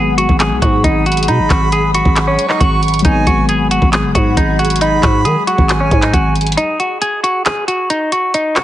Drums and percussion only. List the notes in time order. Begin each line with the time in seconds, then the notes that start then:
0.18 closed hi-hat
0.29 kick
0.40 clap, closed hi-hat
0.62 kick, closed hi-hat
0.84 kick, closed hi-hat
1.06 closed hi-hat
1.12 closed hi-hat
1.17 closed hi-hat
1.23 closed hi-hat
1.28 closed hi-hat
1.50 kick, clap, closed hi-hat
1.72 closed hi-hat
1.95 closed hi-hat
2.05 kick
2.16 clap, closed hi-hat
2.39 closed hi-hat
2.50 clap
2.61 kick, closed hi-hat
2.83 closed hi-hat
2.88 closed hi-hat
2.94 closed hi-hat
2.99 closed hi-hat
3.05 kick, closed hi-hat
3.27 kick, closed hi-hat
3.49 closed hi-hat
3.71 closed hi-hat
3.82 kick
3.93 clap, closed hi-hat
4.15 kick, closed hi-hat
4.37 kick, closed hi-hat
4.59 closed hi-hat
4.65 closed hi-hat
4.70 closed hi-hat
4.76 closed hi-hat
4.81 closed hi-hat
5.03 kick, clap, closed hi-hat
5.25 closed hi-hat
5.47 closed hi-hat
5.58 kick
5.69 clap, closed hi-hat
5.91 kick, closed hi-hat
6.02 clap, closed hi-hat
6.13 kick, closed hi-hat
6.36 closed hi-hat
6.41 closed hi-hat
6.47 closed hi-hat
6.52 closed hi-hat
6.58 closed hi-hat
6.80 closed hi-hat
7.02 closed hi-hat
7.24 closed hi-hat
7.46 clap, closed hi-hat
7.68 closed hi-hat
7.90 closed hi-hat
8.12 closed hi-hat
8.34 closed hi-hat
8.56 clap, closed hi-hat